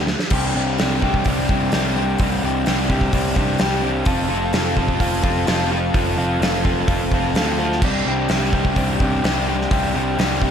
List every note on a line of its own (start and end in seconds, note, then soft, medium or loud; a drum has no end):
0.00 0.14 D2 medium
0.07 snare medium
0.19 snare medium
0.30 0.52 C2 medium
0.30 0.55 C3 medium
0.30 0.55 G3 medium
0.30 0.56 C4 medium
0.30 0.56 D4 medium
0.30 0.57 G4 loud
0.30 kick loud
0.30 crash loud
0.55 0.76 C2 medium
0.55 0.78 C3 medium
0.55 0.78 G3 medium
0.55 0.79 C4 medium
0.55 0.80 D4 medium
0.55 0.80 G4 medium
0.78 1.21 C2 medium
0.78 1.01 C3 medium
0.78 1.02 G3 medium
0.78 1.02 C4 medium
0.78 1.03 D4 medium
0.78 1.04 G4 medium
0.78 snare loud
0.78 open hi-hat medium
1.02 1.25 C3 medium
1.02 1.25 G3 medium
1.02 1.27 C4 medium
1.02 1.26 D4 loud
1.02 1.27 G4 loud
1.02 kick medium
1.14 kick medium
1.24 1.46 C2 medium
1.24 1.48 C3 medium
1.24 1.48 G3 medium
1.24 1.50 C4 medium
1.24 1.50 D4 medium
1.24 1.50 G4 medium
1.24 kick medium
1.24 open hi-hat medium
1.49 1.70 C2 medium
1.49 1.71 C3 medium
1.49 1.72 G3 medium
1.49 1.73 C4 medium
1.49 1.73 D4 medium
1.49 1.73 G4 medium
1.49 kick medium
1.72 2.15 C2 medium
1.72 1.94 C3 medium
1.72 1.95 G3 medium
1.72 1.96 C4 medium
1.72 1.96 D4 medium
1.72 1.96 G4 loud
1.72 snare loud
1.72 open hi-hat medium
1.96 2.19 C3 medium
1.96 2.19 G3 medium
1.96 2.21 C4 medium
1.96 2.20 D4 medium
1.96 2.21 G4 medium
2.18 2.40 C2 medium
2.18 2.42 C3 medium
2.18 2.42 G3 medium
2.18 2.44 C4 loud
2.18 2.43 D4 medium
2.18 2.44 G4 loud
2.18 kick loud
2.18 open hi-hat medium
2.43 2.63 C2 medium
2.43 2.64 C3 medium
2.43 2.65 G3 medium
2.43 2.67 C4 medium
2.43 2.67 D4 medium
2.43 2.67 G4 medium
2.65 3.08 C2 medium
2.65 2.88 C3 medium
2.65 2.88 G3 medium
2.65 2.90 C4 medium
2.65 2.89 D4 medium
2.65 2.90 G4 medium
2.65 snare loud
2.65 open hi-hat medium
2.89 3.11 C3 medium
2.89 3.11 G3 medium
2.89 3.13 C4 medium
2.89 3.12 D4 loud
2.89 3.13 G4 loud
2.89 kick medium
3.01 kick medium
3.12 3.34 C2 medium
3.12 3.34 C3 medium
3.12 3.35 G3 medium
3.12 3.37 C4 medium
3.12 3.36 D4 medium
3.12 3.37 G4 medium
3.12 kick medium
3.12 open hi-hat medium
3.36 3.57 C2 medium
3.36 3.58 C3 medium
3.36 3.59 G3 medium
3.36 3.60 C4 medium
3.36 3.60 D4 medium
3.36 3.60 G4 medium
3.36 kick medium
3.58 4.02 C2 medium
3.58 3.81 C3 medium
3.58 3.82 G3 medium
3.58 3.83 C4 medium
3.58 3.83 D4 medium
3.58 3.83 G4 loud
3.58 snare loud
3.58 open hi-hat medium
3.83 4.05 C3 medium
3.83 4.05 G3 medium
3.83 4.06 C4 medium
3.83 4.06 D4 medium
3.83 4.06 G4 medium
4.05 4.27 F1 medium
4.05 4.29 F3 medium
4.05 4.29 C4 loud
4.05 4.30 F4 loud
4.05 4.31 A4 loud
4.05 kick loud
4.05 open hi-hat medium
4.29 4.50 F1 medium
4.29 4.53 F3 medium
4.29 4.54 C4 medium
4.29 4.54 F4 medium
4.29 4.55 A4 medium
4.53 4.95 F1 medium
4.53 4.76 F3 medium
4.53 4.77 C4 medium
4.53 4.78 F4 medium
4.53 4.78 A4 medium
4.53 snare loud
4.53 open hi-hat medium
4.77 4.99 F3 medium
4.77 5.00 C4 loud
4.77 5.00 F4 loud
4.77 5.00 A4 loud
4.77 kick medium
4.88 kick medium
5.00 5.21 F1 medium
5.00 5.22 F3 medium
5.00 5.23 C4 medium
5.00 5.23 F4 medium
5.00 5.24 A4 loud
5.00 kick medium
5.00 open hi-hat medium
5.23 5.45 F1 medium
5.23 5.45 F3 medium
5.23 5.46 C4 medium
5.23 5.46 F4 medium
5.23 5.47 A4 medium
5.23 kick medium
5.46 5.89 F1 medium
5.46 5.71 F3 medium
5.46 5.71 C4 medium
5.46 5.72 F4 medium
5.46 5.72 A4 medium
5.46 snare loud
5.46 open hi-hat medium
5.72 5.93 F3 medium
5.72 5.95 C4 medium
5.72 5.94 F4 medium
5.72 5.95 A4 medium
5.94 6.16 F1 medium
5.94 6.16 F3 medium
5.94 6.18 C4 medium
5.94 6.17 F4 loud
5.94 6.18 A4 loud
5.94 kick loud
5.94 open hi-hat medium
6.17 6.38 F1 medium
6.17 6.40 F3 medium
6.17 6.42 C4 medium
6.17 6.41 F4 medium
6.17 6.41 A4 loud
6.40 6.82 F1 medium
6.40 6.63 F3 medium
6.40 6.65 C4 medium
6.40 6.64 F4 medium
6.40 6.65 A4 medium
6.40 snare loud
6.40 open hi-hat medium
6.65 6.87 F3 medium
6.65 6.88 C4 loud
6.65 6.87 F4 medium
6.65 6.88 A4 medium
6.65 kick medium
6.88 7.09 F1 medium
6.88 7.12 F3 medium
6.88 7.13 C4 medium
6.88 7.12 F4 medium
6.88 7.13 A4 medium
6.88 kick loud
6.88 open hi-hat medium
7.11 7.32 F1 medium
7.11 7.34 F3 medium
7.11 7.36 C4 medium
7.11 7.36 F4 medium
7.11 7.36 A4 medium
7.11 kick medium
7.34 7.83 D2 medium
7.34 7.57 F3 medium
7.34 7.58 C4 medium
7.34 7.58 F4 medium
7.34 7.58 A4 loud
7.34 snare loud
7.34 open hi-hat medium
7.58 7.81 F3 medium
7.58 7.82 C4 medium
7.58 7.81 F4 medium
7.58 7.82 A4 medium
7.72 snare soft
7.81 8.03 C2 loud
7.81 8.06 C3 medium
7.81 8.06 G3 medium
7.81 8.06 C4 medium
7.81 8.07 D4 loud
7.81 8.08 G4 loud
7.81 kick loud
7.81 crash loud
8.06 8.27 C2 medium
8.06 8.28 C3 medium
8.06 8.29 G3 medium
8.06 8.30 C4 medium
8.06 8.30 D4 medium
8.06 8.30 G4 medium
8.29 8.71 C2 medium
8.29 8.52 C3 medium
8.29 8.53 G3 medium
8.29 8.53 C4 medium
8.29 8.54 D4 medium
8.29 8.54 G4 medium
8.29 snare loud
8.29 open hi-hat medium
8.53 8.74 C3 medium
8.53 8.75 G3 medium
8.53 8.77 C4 medium
8.53 8.76 D4 loud
8.53 8.77 G4 loud
8.53 kick medium
8.65 kick medium
8.75 8.98 C2 medium
8.75 8.99 C3 medium
8.75 9.00 G3 medium
8.75 9.02 C4 medium
8.75 9.01 D4 medium
8.75 9.01 G4 medium
8.75 kick medium
8.75 open hi-hat medium
9.00 9.21 C2 medium
9.00 9.22 C3 medium
9.00 9.23 G3 medium
9.00 9.24 C4 medium
9.00 9.24 D4 loud
9.00 9.24 G4 medium
9.00 kick medium
9.23 9.66 C2 medium
9.23 9.46 C3 medium
9.23 9.46 G3 medium
9.23 9.48 C4 medium
9.23 9.47 D4 medium
9.23 9.48 G4 loud
9.23 snare loud
9.23 open hi-hat medium
9.47 9.69 C3 medium
9.47 9.70 G3 medium
9.47 9.71 C4 medium
9.47 9.71 D4 medium
9.47 9.71 G4 medium
9.62 snare soft
9.70 9.92 C2 medium
9.70 9.93 C3 loud
9.70 9.94 G3 medium
9.70 9.95 C4 medium
9.70 9.94 D4 loud
9.70 9.95 G4 loud
9.70 kick loud
9.70 open hi-hat medium
9.94 10.15 C2 medium
9.94 10.16 C3 medium
9.94 10.17 G3 medium
9.94 10.18 C4 medium
9.94 10.18 D4 medium
9.94 10.18 G4 loud
10.17 10.51 C2 medium
10.17 10.41 C3 medium
10.17 10.41 G3 medium
10.17 10.42 C4 medium
10.17 10.42 D4 medium
10.17 10.42 G4 medium
10.17 snare loud
10.17 open hi-hat medium
10.42 10.51 C3 medium
10.42 10.51 G3 medium
10.42 10.51 C4 medium
10.42 10.51 D4 loud
10.42 10.51 G4 loud
10.42 kick medium